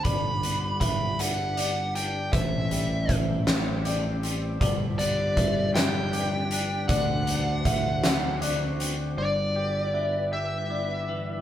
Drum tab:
HH |xxxxxx|xxxxxx|xxxxxx|xxxxxx|
SD |------|---o--|---o--|---o--|
BD |o-o---|o-o---|o-o---|o-o---|

HH |------|
SD |------|
BD |------|